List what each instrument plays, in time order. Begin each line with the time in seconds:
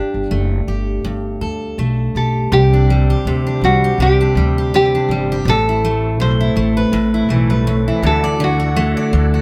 Already playing: steel-string acoustic guitar G2 G3 D4, nylon-string guitar G4
0.14 upright bass G1
0.31 upright bass F#1, steel-string acoustic guitar A3
0.67 upright bass G1, steel-string acoustic guitar G4
1.05 upright bass G1, steel-string acoustic guitar G2
1.41 upright bass D2, steel-string acoustic guitar A4
1.78 upright bass B1, steel-string acoustic guitar A3
2.15 upright bass B1, steel-string acoustic guitar G4, nylon-string guitar A4
2.52 upright bass C2, steel-string acoustic guitar C3, tonewheel organ D3 G3 C4, nylon-string guitar G4
2.73 steel-string acoustic guitar D4
2.90 steel-string acoustic guitar G3
3.10 steel-string acoustic guitar G4
3.25 upright bass D2, steel-string acoustic guitar C3
3.47 steel-string acoustic guitar D4
3.61 upright bass C2, steel-string acoustic guitar G3, nylon-string guitar F#4
3.84 steel-string acoustic guitar G4
3.98 upright bass C2, steel-string acoustic guitar C3
4.02 nylon-string guitar G4
4.21 steel-string acoustic guitar D4
4.35 upright bass D2, steel-string acoustic guitar G3
4.58 steel-string acoustic guitar G4
4.74 steel-string acoustic guitar C3, nylon-string guitar G4
4.95 steel-string acoustic guitar D4
5.09 upright bass G1, steel-string acoustic guitar G3
5.32 steel-string acoustic guitar G4
5.45 upright bass A1, steel-string acoustic guitar A2, tonewheel organ A3 C4
5.49 nylon-string guitar A4
5.69 steel-string acoustic guitar E4
5.85 steel-string acoustic guitar A3
6.19 upright bass B1, steel-string acoustic guitar A2, nylon-string guitar C5
6.41 steel-string acoustic guitar E4
6.56 upright bass A1, steel-string acoustic guitar A3
6.77 steel-string acoustic guitar B4
6.92 upright bass A1, steel-string acoustic guitar A2
7.14 steel-string acoustic guitar E4
7.29 upright bass B1, cello E3, steel-string acoustic guitar A3
7.50 cello G3, steel-string acoustic guitar B4
7.67 steel-string acoustic guitar A2, cello A3
7.87 cello E3, steel-string acoustic guitar E4
8.02 upright bass D2, tonewheel organ D3 D4 E4 F#4 A4, steel-string acoustic guitar D3, nylon-string guitar A4
8.24 steel-string acoustic guitar D5
8.40 steel-string acoustic guitar D3, nylon-string guitar F#4
8.60 steel-string acoustic guitar F#4
8.76 steel-string acoustic guitar A3
8.97 steel-string acoustic guitar D5
9.13 upright bass D2, steel-string acoustic guitar D3
9.34 steel-string acoustic guitar F#4